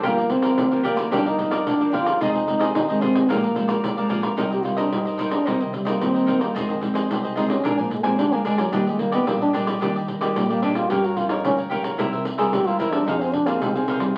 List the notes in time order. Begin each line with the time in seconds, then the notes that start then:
Already playing: F3 A#3 D4
0.03 G1 G2 A#3 G4 A#4 D5 F5, pandeiro
0.17 A#4 D5 F5, pandeiro
0.30 F3 A#3 C4 D4, muted cavaquinho stroke, pandeiro
0.42 A#4 D5 F5, pandeiro
0.58 D2, pandeiro
0.71 F3 A#3 D4 A#4 D5 F5, pandeiro
0.83 A#3 G4 A#4 D5 F5, pandeiro
0.96 F3 A#3 D4 A#4 D5 F5, pandeiro
1.11 G1 G2 F3 A#3 D4 G4 A#4 D5 F5, pandeiro
1.25 D#4 A#4 D5 F5, pandeiro
1.38 F3 A#3 D4, muted cavaquinho stroke, pandeiro
1.51 A#4 D5 F5, pandeiro
1.67 D2 D3 D4, pandeiro
1.80 F3 A#3 D4 A#4 D5 F5, pandeiro
1.92 G1 F4 G4 A#4 D5 F5, pandeiro
2.05 A#4 D5 F5, pandeiro
2.21 F1 F2 D#3 G#3 C4 D#4 F4 G#4 C5 D#5, pandeiro
2.34 G#4 C5 D#5, pandeiro
2.47 D#3 G#3 C4, muted cavaquinho stroke, pandeiro
2.59 G#4 C5 D#5, pandeiro
2.75 G#1 C3 D#4, pandeiro
2.88 D#3 G#3 C4 G#4 C5 D#5, pandeiro
3.01 C4 F4 G#4 C5 D#5, pandeiro
3.14 G#4 C5 D#5, pandeiro
3.29 A#1 A#2 F3 G#3 A#3 D4 G#4 A#4 D5 F5, pandeiro
3.42 A#4 D5 F5, pandeiro
3.55 F3 G#3 D4, muted cavaquinho stroke, pandeiro
3.68 A#4 D5 F5, pandeiro
3.83 F2, pandeiro
3.97 F3 G#3 D4 A#4 D5 F5, pandeiro
4.09 A#1 G#4 A#4 D5 F5, pandeiro
4.22 A#4 D5 F5, pandeiro
4.37 C2 C3 G3 A#3 D#4 A#4 C5 D#5, pandeiro
4.51 G4 A#4 C5 D#5, pandeiro
4.64 G3 A#3 D#4 F4, muted cavaquinho stroke, pandeiro
4.77 D4 A#4 C5 D#5, pandeiro
4.92 G2 D#4, pandeiro
5.05 A#4 C5 D#5, pandeiro
5.18 G3 A#3 D#4 A#4 C5 D#5, pandeiro
5.31 D4 A#4 C5 D#5, pandeiro
5.45 C2 C3 G3 A#3 C4 D#4 A#4 C5 D#5, pandeiro
5.60 C3 D#3 A#4 C5 D#5, pandeiro
5.73 G3, muted cavaquinho stroke, pandeiro
5.85 G3 A#3 D#4 A#4 C5 D#5, pandeiro
6.01 D#2 G2 C4, pandeiro
6.14 A#4 C5 D#5, pandeiro
6.26 G3 A#3 D#4 A#4 C5 D#5, pandeiro
6.39 A#3 A#4 C5 D#5, pandeiro
6.54 F2 D#3 G#3 C4 F4 G#4 C5 D#5, pandeiro
6.69 D#3 G#4 C5 D#5, pandeiro
6.81 D#3 G#3 C4, muted cavaquinho stroke, pandeiro
6.94 G#4 C5 D#5, pandeiro
7.09 C2 C3, pandeiro
7.23 G#4 C5 D#5, pandeiro
7.35 D#3 G#3 C4 D#4 F4 G#4 C5 D#5, pandeiro
7.49 C#4 G#4 C5 D#5, pandeiro
7.63 A#1 A#2 F3 G#3 D4 A#4 D5 G#5, pandeiro
7.77 A#2 F3 A#4 D5 G#5, pandeiro
7.90 G#3, muted cavaquinho stroke, pandeiro
8.03 F3 G#3 C4 D4 A#4 D5 G#5, pandeiro
8.18 D2 F2 D4, pandeiro
8.32 F3 G#3 A#3 D4 A#4 D5 G#5, pandeiro
8.44 F3 G#3 D4 A#4 D5 G#5, pandeiro
8.57 F#3 A#4 D5 G#5, pandeiro
8.72 D#2 D#3 G3 A#3 D4 G4 D5 D#5, pandeiro
8.86 G#3 G4 D5 D#5, pandeiro
8.99 G3 A#3 D4, muted cavaquinho stroke, pandeiro
9.12 B3 G4 D5 D#5, pandeiro
9.27 A#1 A#2 G3 A#3 D4, pandeiro
9.41 D4 G4 D5 D#5, pandeiro
9.53 G3 A#3 D4 G4 D5 D#5, pandeiro
9.66 G4 D5 D#5, pandeiro
9.81 D#2 D#3 G3 A#3 D4 G4 D5 D#5, pandeiro
9.95 D#3 G4 D5 D#5, pandeiro
10.08 muted cavaquinho stroke, pandeiro
10.21 G3 A#3 D4 G4 D5 D#5, pandeiro
10.36 A#1 A#2 G3, pandeiro
10.49 G3 A#3 D4 G4 D5 D#5, pandeiro
10.62 G3 A#3 D4 G4 D5 D#5, pandeiro
10.75 F4 G4 D5 D#5, pandeiro
10.90 G2 F3 A#3 C#4 G4 A#4 C#5 F5, pandeiro
11.04 F#4 A#4 C#5 F5, pandeiro
11.16 F3 A#3 C#4 F4, muted cavaquinho stroke, pandeiro
11.29 D#4 A#4 C#5 F5, pandeiro
11.44 D2 G2 C#4, pandeiro
11.58 A#4 C#5 F5, pandeiro
11.70 F3 A#3 C#4 G4 A#4 C#5 F5, pandeiro
11.83 A#4 C#5 F5, pandeiro
11.98 C2 C3 G3 A#3 E4 A#4 C5 E5, pandeiro
12.12 C3 A#4 C5 E5, pandeiro
12.25 C2, muted cavaquinho stroke, pandeiro
12.38 G3 A#3 E4 G#4 A#4 C5 E5, pandeiro
12.53 D2 G2 G4, pandeiro
12.67 G3 A#3 E4 F4 A#4 C5 E5, pandeiro
12.79 E2 G3 A#3 E4 A#4 C5 E5, pandeiro
12.92 D4 A#4 C5 E5, pandeiro
13.06 F2 F3 C4 D#4 G#4 C5 F5, pandeiro
13.21 C4 G#4 C5 F5, pandeiro
13.33 D4, muted cavaquinho stroke, pandeiro
13.46 A#3 C4 D#4 G#4 C5 F5, pandeiro
13.61 C2 C3 G#3, pandeiro
13.75 C3 C4 D#4 G#4 C5 F5, pandeiro
13.87 D#3 D#4 G#4 C5 F5, pandeiro
14.00 G3 G#4 C5 F5, pandeiro